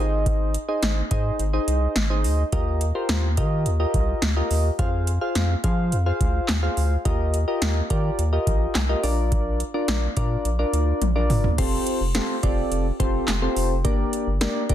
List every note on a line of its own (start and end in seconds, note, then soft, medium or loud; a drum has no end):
0.00 0.57 G#1 loud
0.00 0.54 D#4 medium
0.00 0.54 G#4 medium
0.00 0.54 C5 medium
0.00 0.54 D#5 loud
0.26 kick loud
0.26 closed hi-hat medium
0.54 closed hi-hat medium
0.68 1.01 D#4 medium
0.68 1.01 G#4 medium
0.68 1.01 C5 medium
0.68 1.01 D#5 medium
0.83 1.02 G#1 loud
0.83 snare loud
0.83 closed hi-hat medium
1.11 1.31 G#2 loud
1.11 1.43 D#4 medium
1.11 1.43 G#4 medium
1.11 1.43 C5 medium
1.11 1.43 D#5 medium
1.11 kick medium
1.11 closed hi-hat medium
1.39 1.59 G#1 loud
1.39 closed hi-hat medium
1.53 1.97 D#4 medium
1.53 1.97 G#4 medium
1.53 1.97 C5 medium
1.53 1.97 D#5 medium
1.68 1.87 C2 medium
1.68 closed hi-hat medium
1.96 2.26 G#1 loud
1.96 snare loud
1.96 closed hi-hat medium
2.10 2.42 D#4 medium
2.10 2.42 G#4 medium
2.10 2.42 C5 medium
2.10 2.42 D#5 medium
2.24 2.44 D2 loud
2.24 open hi-hat medium
2.52 2.92 D#2 loud
2.52 2.85 F4 medium
2.52 2.85 G4 medium
2.52 2.85 A#4 medium
2.52 2.85 D#5 medium
2.52 kick loud
2.52 closed hi-hat medium
2.81 closed hi-hat medium
2.95 3.27 F4 medium
2.95 3.27 G4 medium
2.95 3.27 A#4 medium
2.95 3.27 C5 medium
3.09 3.39 D#2 loud
3.09 snare loud
3.09 closed hi-hat medium
3.37 3.67 D#3 loud
3.37 3.70 F4 medium
3.37 3.70 G4 medium
3.37 3.70 A#4 medium
3.37 3.70 D#5 medium
3.37 kick medium
3.37 closed hi-hat medium
3.66 3.86 D#2 loud
3.66 closed hi-hat medium
3.80 4.23 F4 medium
3.80 4.23 G4 medium
3.80 4.23 A#4 medium
3.80 4.23 D#5 medium
3.94 4.14 C2 loud
3.94 kick medium
3.94 closed hi-hat medium
4.22 4.42 D2 medium
4.22 snare loud
4.22 closed hi-hat medium
4.36 4.69 F4 medium
4.36 4.69 G4 medium
4.36 4.69 A#4 medium
4.36 4.69 D#5 medium
4.51 4.70 D#2 medium
4.51 open hi-hat medium
4.79 5.19 F2 loud
4.79 5.11 F4 medium
4.79 5.11 G#4 medium
4.79 5.11 C5 medium
4.79 5.11 F5 medium
4.79 kick loud
4.79 closed hi-hat medium
5.07 closed hi-hat medium
5.21 5.54 F4 medium
5.21 5.54 G#4 medium
5.21 5.54 C5 medium
5.21 5.54 F5 medium
5.35 5.55 F2 loud
5.35 snare loud
5.35 closed hi-hat medium
5.64 5.94 F3 loud
5.64 5.96 F4 medium
5.64 5.96 G#4 medium
5.64 5.96 C5 medium
5.64 5.96 F5 medium
5.64 kick medium
5.64 closed hi-hat medium
5.92 6.12 F2 loud
5.92 closed hi-hat medium
6.06 6.49 F4 medium
6.06 6.49 G#4 medium
6.06 6.49 C5 medium
6.06 6.49 F5 medium
6.20 6.40 D2 loud
6.20 kick medium
6.20 closed hi-hat medium
6.48 6.69 D#2 loud
6.48 snare loud
6.48 clap loud
6.48 closed hi-hat medium
6.63 6.95 F4 medium
6.63 6.95 G#4 medium
6.63 6.95 C5 medium
6.63 6.95 F5 medium
6.77 6.97 D2 loud
6.77 open hi-hat medium
7.05 7.45 D#2 loud
7.05 7.38 F4 medium
7.05 7.38 G4 medium
7.05 7.38 A#4 medium
7.05 7.38 D#5 medium
7.05 kick loud
7.05 closed hi-hat medium
7.34 closed hi-hat medium
7.48 7.80 F4 medium
7.48 7.80 G4 medium
7.48 7.80 A#4 medium
7.48 7.80 D#5 medium
7.62 7.82 D#2 loud
7.62 snare loud
7.62 closed hi-hat medium
7.90 8.10 D#3 loud
7.90 8.23 F4 medium
7.90 8.23 G4 medium
7.90 8.23 A#4 medium
7.90 8.23 D5 medium
7.90 kick medium
7.90 closed hi-hat medium
8.19 8.38 D#2 loud
8.19 closed hi-hat medium
8.33 8.76 F4 medium
8.33 8.76 G4 medium
8.33 8.76 A#4 medium
8.33 8.76 D#5 medium
8.47 8.67 A#1 medium
8.47 kick medium
8.47 closed hi-hat medium
8.75 8.95 C2 loud
8.75 snare loud
8.75 clap loud
8.75 closed hi-hat medium
8.89 9.02 F4 medium
8.89 9.03 G4 medium
8.89 9.02 A#4 medium
8.89 9.04 D#5 loud
9.03 9.63 A#1 loud
9.03 9.60 D4 medium
9.03 9.60 F4 medium
9.03 9.60 A#4 medium
9.03 9.60 D5 loud
9.03 open hi-hat medium
9.32 kick loud
9.32 closed hi-hat medium
9.60 closed hi-hat medium
9.74 10.07 D4 medium
9.74 10.07 F4 medium
9.74 10.07 A#4 medium
9.74 10.07 D5 medium
9.88 10.08 A#1 loud
9.88 snare loud
9.88 closed hi-hat medium
10.17 10.37 A#2 loud
10.17 10.49 D4 medium
10.17 10.49 F4 medium
10.17 10.49 A#4 medium
10.17 10.49 D5 loud
10.17 kick medium
10.17 closed hi-hat medium
10.45 10.65 A#1 loud
10.45 closed hi-hat medium
10.59 11.02 D4 medium
10.59 11.02 F4 medium
10.59 11.02 A#4 medium
10.59 11.02 D5 loud
10.73 10.93 D2 medium
10.73 closed hi-hat medium
11.01 11.31 A#1 loud
11.01 closed hi-hat medium
11.01 high tom medium
11.16 11.48 D4 medium
11.16 11.48 F4 medium
11.16 11.48 A#4 medium
11.16 11.48 D5 loud
11.30 11.50 G1 medium
11.30 mid tom medium
11.30 open hi-hat medium
11.44 floor tom medium
11.58 11.78 F1 loud
11.58 12.01 C4 medium
11.58 12.01 F4 medium
11.58 12.01 G4 medium
11.58 12.01 A4 medium
11.58 12.01 C5 loud
11.58 kick loud
11.58 closed hi-hat medium
11.58 crash loud
11.87 closed hi-hat medium
12.01 12.20 F1 loud
12.15 12.36 C4 medium
12.15 12.36 F4 medium
12.15 12.36 G4 medium
12.15 12.36 A4 medium
12.15 12.36 C5 loud
12.15 snare loud
12.15 closed hi-hat medium
12.43 12.63 F1 loud
12.43 12.86 C4 medium
12.43 12.86 F4 medium
12.43 12.86 G4 medium
12.43 12.86 A4 medium
12.43 12.86 D5 loud
12.43 kick medium
12.43 closed hi-hat medium
12.71 12.91 F1 loud
12.71 closed hi-hat medium
13.00 13.20 F1 loud
13.00 13.32 C4 medium
13.00 13.32 F4 medium
13.00 13.32 G4 medium
13.00 13.32 A4 medium
13.00 13.32 C5 loud
13.00 kick loud
13.00 closed hi-hat medium
13.28 13.48 F1 loud
13.28 snare loud
13.28 clap loud
13.28 closed hi-hat medium
13.42 13.74 C4 medium
13.42 13.74 F4 medium
13.42 13.74 G4 medium
13.42 13.75 A4 medium
13.42 13.75 C5 loud
13.56 13.86 F1 loud
13.56 open hi-hat medium
13.85 14.04 G1 loud
13.85 14.28 A#3 medium
13.85 14.28 D4 medium
13.85 14.28 G4 medium
13.85 14.28 A#4 medium
13.85 14.28 D5 loud
13.85 kick loud
13.85 closed hi-hat medium
14.13 closed hi-hat medium
14.27 14.47 G1 loud
14.41 14.63 A#3 medium
14.41 14.63 D4 medium
14.41 14.63 G4 medium
14.41 14.63 A#4 medium
14.41 14.63 D5 loud
14.41 snare loud
14.41 closed hi-hat medium
14.69 14.74 G1 loud
14.69 14.74 A#3 medium
14.69 14.74 D4 medium
14.69 14.74 G4 medium
14.69 14.74 A#4 medium
14.69 14.74 D5 loud
14.69 kick medium
14.69 closed hi-hat medium